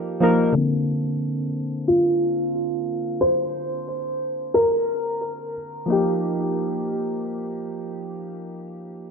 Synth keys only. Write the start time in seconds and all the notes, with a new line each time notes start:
Already playing: F3 A#3 D#4 G4
0.20 F3 A#3 D#4 A#4
0.52 D3 A#3
0.57 C4 A5
5.86 F3 A#3
5.90 D#4 G4